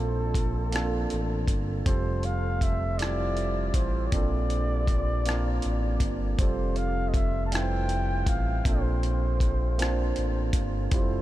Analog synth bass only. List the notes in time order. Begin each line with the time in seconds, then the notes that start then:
Already playing: A#1
1.13 A1
1.48 G1
1.87 F1
3.75 A1
4.13 A#1
5.65 A1
6.01 G1
6.40 F1
8.27 A1
8.66 A#1
10.18 A1
10.54 G1
10.93 F1